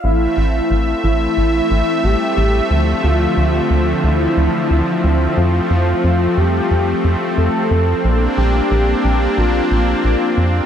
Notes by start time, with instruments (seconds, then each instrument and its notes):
0.04 analog synth bass A1, analog synth pad A3 C4 E5, analog synth lead E4
0.37 analog synth bass A1
0.71 analog synth bass A1
1.04 analog synth bass A1, analog synth lead E4
1.37 analog synth bass A1
1.71 analog synth bass A1
2.04 analog synth bass A1, analog synth lead G4
2.37 analog synth bass A1
2.71 analog synth bass D2, analog synth pad D3 F3
3.04 analog synth bass D2, analog synth lead F4
3.37 analog synth bass D2
3.70 analog synth bass D2
4.04 analog synth bass D2, analog synth lead E4
4.37 analog synth bass D2
4.71 analog synth bass D2
5.04 analog synth bass D2
5.37 analog synth bass F2, analog synth pad A3, analog synth lead F4
5.71 analog synth bass F2
6.04 analog synth bass F2
6.37 analog synth bass F2, analog synth lead G4
6.71 analog synth bass F2
7.04 analog synth bass F2
7.38 analog synth bass F2, analog synth lead A4
7.71 analog synth bass F2
8.04 analog synth bass A#1, analog synth pad A#3 D4
8.38 analog synth bass A#1, analog synth lead G4
8.71 analog synth bass A#1
9.04 analog synth bass A#1
9.37 analog synth bass A#1, analog synth lead F4
9.71 analog synth bass A#1
10.04 analog synth bass A#1
10.38 analog synth bass F2